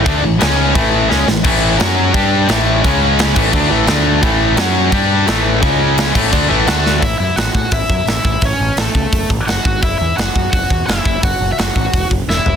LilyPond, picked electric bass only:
\new Staff \with { instrumentName = "Picked electric bass" } { \clef bass \time 4/4 \key a \major \tempo 4 = 172 d,8 a,,8 cis,4 a,,4 cis,8 a,,8 | a,,4 fis,4 g,4 a,,4 | cis,4. a,,8 d,8 a,,8 d,4 | a,,4 fis,4 g,4 a,,4 |
cis,4. a,,8 d,8 a,,8 d,4 | a,,8 fis,8 a,,8 a,8 a,,8 fis,8 a,,8 a,,8 | a,,8 a,,8 a,,8 cis,8 fis,,8 a,,8 fis,,8 gis,,8 | fis,,8 e,8 fis,,8 fis,8 fis,,8 e,8 fis,,8 fis,,8 |
fis,,8 fis,,8 fis,,8 a,,8 e,,8 fis,,8 e,,8 e,,8 | }